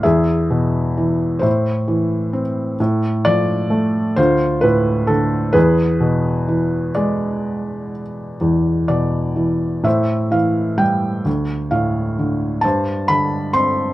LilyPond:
<<
  \new Staff \with { instrumentName = "Felt piano" } { \time 6/8 \key e \phrygian \tempo 4. = 43 << { e''4. c''4 r8 | r8 d''4 c''8 b'8 a'8 | b'4. d''4 r8 | r8 d''4 e''8 f''8 g''8 |
r8 f''4 a''8 b''8 c'''8 | } \\ { gis'4. e'4. | r4. f'4. | gis'4. r4. | r4. c''4. |
r4. c''4. | } >> }
  \new Staff \with { instrumentName = "Felt piano" } { \clef bass \time 6/8 \key e \phrygian e,8 b,8 e8 a,8 e8 c'8 | a,8 f8 a8 d,8 a,8 d8 | e,8 b,8 e8 gis4. | e,8 b,8 e8 a,8 e8 g8 |
d,8 a,8 d8 g,8 d8 c'8 | }
>>